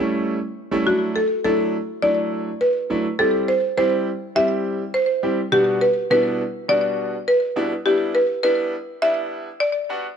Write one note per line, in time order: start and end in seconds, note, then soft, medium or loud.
0.00 0.37 G3 medium
0.00 0.37 A3 medium
0.00 0.37 C#4 medium
0.00 0.37 E4 medium
0.00 0.24 C#5 medium
0.71 0.86 G3 medium
0.71 0.85 A3 medium
0.71 0.86 C#4 medium
0.71 0.85 E4 loud
0.86 1.17 F#3 medium
0.86 1.17 A3 medium
0.86 1.17 D4 medium
0.86 1.17 E4 medium
0.86 1.17 F#4 medium
1.16 1.43 A4 medium
1.44 1.75 F#3 medium
1.44 1.75 A3 medium
1.44 1.75 D4 medium
1.44 1.75 E4 medium
1.44 2.05 A4 medium
2.02 2.48 F#3 medium
2.02 2.48 A3 medium
2.02 2.48 D4 medium
2.02 2.48 E4 medium
2.02 2.63 D5 loud
2.61 2.88 B4 medium
2.90 3.05 F#3 medium
2.90 3.05 A3 medium
2.90 3.05 D4 medium
2.90 3.05 E4 medium
3.19 3.49 G3 medium
3.19 3.49 C4 medium
3.19 3.50 E4 medium
3.19 3.50 G4 medium
3.19 3.46 A4 medium
3.48 3.76 C5 medium
3.77 4.08 G3 medium
3.77 4.08 C4 medium
3.77 4.08 E4 medium
3.77 4.08 G4 loud
3.77 4.38 C5 medium
4.35 4.81 G3 medium
4.35 4.81 C4 medium
4.35 4.81 E4 medium
4.35 4.81 G4 medium
4.35 4.90 E5 loud
4.94 5.21 C5 medium
5.23 5.38 G3 medium
5.23 5.38 C4 medium
5.23 5.38 E4 medium
5.23 5.38 G4 medium
5.52 5.82 B2 medium
5.52 5.82 G3 medium
5.52 5.83 B3 medium
5.52 5.83 D4 medium
5.52 5.83 F#4 medium
5.52 5.79 G4 medium
5.81 6.09 B4 medium
6.10 6.41 B2 medium
6.10 6.41 G3 medium
6.10 6.41 B3 medium
6.10 6.41 D4 medium
6.10 6.41 E4 medium
6.10 6.65 B4 medium
6.68 7.14 B2 medium
6.68 7.14 G3 medium
6.68 7.14 B3 medium
6.68 7.14 D4 medium
6.68 7.14 F#4 medium
6.68 7.23 D5 loud
7.28 7.55 B4 medium
7.56 7.71 B2 medium
7.56 7.71 G3 medium
7.56 7.71 B3 medium
7.56 7.71 D4 medium
7.56 7.72 E4 loud
7.85 8.16 G3 medium
7.85 8.16 B3 medium
7.85 8.16 D4 medium
7.85 8.16 E4 medium
7.85 8.16 G4 medium
8.15 8.42 B4 medium
8.43 8.74 G3 medium
8.43 8.74 B3 medium
8.43 8.74 D4 medium
8.43 8.74 E4 loud
8.43 8.98 B4 loud
9.02 9.47 G3 medium
9.02 9.47 B3 medium
9.02 9.47 D4 medium
9.02 9.47 E4 medium
9.02 9.56 E5 loud
9.60 9.73 D5 medium
9.89 10.04 G3 medium
9.89 10.05 B3 medium
9.89 10.05 D4 medium
9.89 10.05 F#4 loud